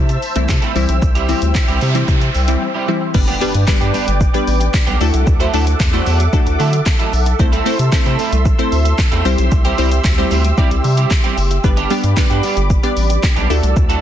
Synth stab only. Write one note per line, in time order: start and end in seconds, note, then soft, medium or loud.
0.36 0.55 E3 medium
0.36 0.55 A3 medium
0.36 0.55 C4 medium
0.36 0.55 E4 medium
0.75 1.18 E3 medium
0.75 1.18 G3 medium
0.75 1.18 C4 medium
0.75 1.18 E4 loud
1.28 1.60 E3 medium
1.28 1.60 G3 medium
1.28 1.60 C4 medium
1.28 1.60 E4 medium
1.95 2.20 E3 loud
1.95 2.20 G3 medium
1.95 2.20 C4 medium
1.95 2.20 E4 loud
2.48 2.67 E3 medium
2.48 2.67 G3 medium
2.48 2.67 C4 medium
2.48 2.67 E4 medium
2.88 3.13 E3 medium
2.88 3.13 G3 medium
2.88 3.13 C4 medium
2.88 3.13 E4 loud
3.14 3.27 G3 medium
3.14 3.27 B3 medium
3.14 3.27 D4 medium
3.14 3.27 G4 medium
3.14 3.27 B4 loud
3.41 3.54 G3 loud
3.41 3.54 B3 medium
3.41 3.54 D4 medium
3.41 3.54 G4 medium
3.41 3.54 B4 loud
3.67 3.99 G3 medium
3.67 3.99 B3 medium
3.67 3.99 D4 medium
3.67 3.99 G4 medium
3.67 3.99 B4 loud
4.34 4.84 G3 medium
4.34 4.84 B3 medium
4.34 4.84 D4 medium
4.34 4.84 G4 medium
4.34 4.85 B4 loud
5.01 5.32 A3 medium
5.01 5.32 D4 medium
5.01 5.32 E4 medium
5.01 5.33 F#4 medium
5.01 5.33 A4 loud
5.40 5.46 F#4 medium
5.40 5.47 C5 loud
5.54 5.72 A3 medium
5.54 5.73 D4 medium
5.54 5.73 E4 medium
5.54 5.73 F#4 medium
5.54 5.73 A4 loud
5.93 6.12 A3 medium
5.93 6.12 D4 medium
5.93 6.12 E4 medium
5.93 6.12 F#4 medium
5.93 6.12 C5 medium
6.33 6.83 A3 medium
6.33 6.83 D4 medium
6.33 6.83 E4 medium
6.33 6.84 F#4 medium
6.33 6.84 A4 loud
7.39 7.52 A3 medium
7.39 7.52 C4 medium
7.39 7.52 E4 medium
7.39 7.52 A4 medium
7.39 7.52 C5 loud
7.65 7.78 A3 loud
7.65 7.78 C4 medium
7.65 7.78 E4 medium
7.65 7.79 A4 medium
7.65 7.79 C5 loud
7.92 8.24 A3 loud
7.92 8.24 C4 medium
7.92 8.24 E4 medium
7.92 8.24 A4 medium
7.92 8.24 C5 loud
8.59 9.09 A3 medium
8.59 9.09 C4 medium
8.59 9.09 E4 medium
8.59 9.09 A4 medium
8.59 9.09 C5 loud
9.25 9.57 G3 medium
9.25 9.57 C4 medium
9.25 9.57 E4 medium
9.25 9.57 G4 medium
9.25 9.57 C5 loud
9.65 9.71 G4 loud
9.65 9.71 C5 loud
9.78 9.97 G3 medium
9.78 9.97 C4 medium
9.78 9.97 E4 medium
9.78 9.97 G4 medium
9.78 9.97 C5 loud
10.18 10.37 G3 medium
10.18 10.37 C4 medium
10.18 10.37 E4 medium
10.18 10.37 G4 medium
10.18 10.37 C5 medium
10.58 11.08 G3 medium
10.58 11.08 C4 medium
10.58 11.08 E4 medium
10.58 11.08 G4 medium
10.58 11.08 D5 medium
11.64 11.77 G3 medium
11.64 11.77 B3 medium
11.64 11.77 D4 medium
11.64 11.77 G4 medium
11.64 11.77 B4 loud
11.90 12.03 G3 loud
11.90 12.03 B3 medium
11.90 12.03 D4 medium
11.90 12.03 G4 medium
11.90 12.03 D5 loud
12.17 12.48 G3 medium
12.17 12.49 B3 medium
12.17 12.49 D4 medium
12.17 12.49 G4 medium
12.17 12.49 B4 loud
12.83 13.34 G3 medium
12.83 13.34 B3 medium
12.83 13.34 D4 medium
12.83 13.34 G4 medium
12.83 13.34 D5 loud
13.50 13.82 A3 medium
13.50 13.82 D4 medium
13.50 13.82 E4 medium
13.50 13.82 F#4 medium
13.50 13.82 A4 loud
13.90 13.96 F#4 loud
13.90 13.96 A4 loud